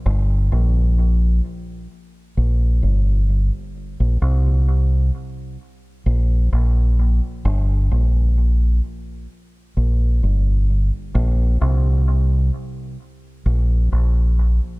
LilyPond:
\new Staff \with { instrumentName = "Fingered electric bass" } { \clef bass \time 4/4 \key g \minor \tempo 4 = 65 g,,8 bes,,4 r4 bes,,8 g,,8. r16 | r16 bes,,16 c,4 r4 bes,,8 bes,,8. r16 | g,,8 bes,,4 r4 bes,,8 g,,8. r16 | bes,,8 c,4 r4 bes,,8 bes,,8. r16 | }